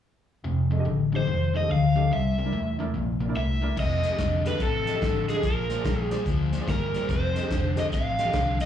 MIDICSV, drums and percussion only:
0, 0, Header, 1, 2, 480
1, 0, Start_track
1, 0, Tempo, 415225
1, 518, Time_signature, 4, 2, 24, 8
1, 10005, End_track
2, 0, Start_track
2, 0, Title_t, "Drums"
2, 4359, Note_on_c, 9, 49, 88
2, 4361, Note_on_c, 9, 36, 75
2, 4475, Note_off_c, 9, 49, 0
2, 4477, Note_off_c, 9, 36, 0
2, 4664, Note_on_c, 9, 42, 59
2, 4671, Note_on_c, 9, 38, 31
2, 4780, Note_off_c, 9, 42, 0
2, 4787, Note_off_c, 9, 38, 0
2, 4839, Note_on_c, 9, 42, 80
2, 4840, Note_on_c, 9, 36, 71
2, 4846, Note_on_c, 9, 38, 91
2, 4954, Note_off_c, 9, 42, 0
2, 4956, Note_off_c, 9, 36, 0
2, 4961, Note_off_c, 9, 38, 0
2, 5152, Note_on_c, 9, 42, 57
2, 5159, Note_on_c, 9, 38, 32
2, 5268, Note_off_c, 9, 42, 0
2, 5275, Note_off_c, 9, 38, 0
2, 5318, Note_on_c, 9, 42, 73
2, 5321, Note_on_c, 9, 36, 75
2, 5434, Note_off_c, 9, 42, 0
2, 5437, Note_off_c, 9, 36, 0
2, 5630, Note_on_c, 9, 42, 57
2, 5637, Note_on_c, 9, 38, 29
2, 5745, Note_off_c, 9, 42, 0
2, 5752, Note_off_c, 9, 38, 0
2, 5802, Note_on_c, 9, 36, 71
2, 5805, Note_on_c, 9, 42, 70
2, 5811, Note_on_c, 9, 38, 91
2, 5918, Note_off_c, 9, 36, 0
2, 5920, Note_off_c, 9, 42, 0
2, 5927, Note_off_c, 9, 38, 0
2, 6110, Note_on_c, 9, 42, 56
2, 6117, Note_on_c, 9, 38, 32
2, 6226, Note_off_c, 9, 42, 0
2, 6233, Note_off_c, 9, 38, 0
2, 6280, Note_on_c, 9, 42, 80
2, 6282, Note_on_c, 9, 36, 79
2, 6396, Note_off_c, 9, 42, 0
2, 6398, Note_off_c, 9, 36, 0
2, 6587, Note_on_c, 9, 42, 58
2, 6594, Note_on_c, 9, 38, 32
2, 6703, Note_off_c, 9, 42, 0
2, 6710, Note_off_c, 9, 38, 0
2, 6759, Note_on_c, 9, 36, 75
2, 6761, Note_on_c, 9, 42, 72
2, 6768, Note_on_c, 9, 38, 98
2, 6874, Note_off_c, 9, 36, 0
2, 6877, Note_off_c, 9, 42, 0
2, 6884, Note_off_c, 9, 38, 0
2, 7065, Note_on_c, 9, 42, 56
2, 7072, Note_on_c, 9, 38, 30
2, 7181, Note_off_c, 9, 42, 0
2, 7188, Note_off_c, 9, 38, 0
2, 7236, Note_on_c, 9, 36, 77
2, 7237, Note_on_c, 9, 42, 66
2, 7352, Note_off_c, 9, 36, 0
2, 7352, Note_off_c, 9, 42, 0
2, 7546, Note_on_c, 9, 42, 49
2, 7553, Note_on_c, 9, 38, 30
2, 7662, Note_off_c, 9, 42, 0
2, 7669, Note_off_c, 9, 38, 0
2, 7718, Note_on_c, 9, 36, 70
2, 7720, Note_on_c, 9, 42, 65
2, 7727, Note_on_c, 9, 38, 87
2, 7833, Note_off_c, 9, 36, 0
2, 7835, Note_off_c, 9, 42, 0
2, 7842, Note_off_c, 9, 38, 0
2, 8028, Note_on_c, 9, 42, 51
2, 8035, Note_on_c, 9, 38, 32
2, 8144, Note_off_c, 9, 42, 0
2, 8151, Note_off_c, 9, 38, 0
2, 8195, Note_on_c, 9, 36, 79
2, 8198, Note_on_c, 9, 42, 78
2, 8311, Note_off_c, 9, 36, 0
2, 8314, Note_off_c, 9, 42, 0
2, 8507, Note_on_c, 9, 42, 59
2, 8514, Note_on_c, 9, 38, 33
2, 8623, Note_off_c, 9, 42, 0
2, 8630, Note_off_c, 9, 38, 0
2, 8677, Note_on_c, 9, 36, 73
2, 8678, Note_on_c, 9, 42, 76
2, 8685, Note_on_c, 9, 38, 93
2, 8792, Note_off_c, 9, 36, 0
2, 8793, Note_off_c, 9, 42, 0
2, 8800, Note_off_c, 9, 38, 0
2, 8980, Note_on_c, 9, 42, 58
2, 8987, Note_on_c, 9, 38, 29
2, 9096, Note_off_c, 9, 42, 0
2, 9103, Note_off_c, 9, 38, 0
2, 9157, Note_on_c, 9, 36, 69
2, 9161, Note_on_c, 9, 42, 75
2, 9273, Note_off_c, 9, 36, 0
2, 9277, Note_off_c, 9, 42, 0
2, 9463, Note_on_c, 9, 42, 60
2, 9470, Note_on_c, 9, 38, 29
2, 9579, Note_off_c, 9, 42, 0
2, 9586, Note_off_c, 9, 38, 0
2, 9634, Note_on_c, 9, 42, 73
2, 9637, Note_on_c, 9, 36, 73
2, 9641, Note_on_c, 9, 38, 94
2, 9749, Note_off_c, 9, 42, 0
2, 9753, Note_off_c, 9, 36, 0
2, 9756, Note_off_c, 9, 38, 0
2, 9944, Note_on_c, 9, 42, 61
2, 9951, Note_on_c, 9, 38, 31
2, 10005, Note_off_c, 9, 38, 0
2, 10005, Note_off_c, 9, 42, 0
2, 10005, End_track
0, 0, End_of_file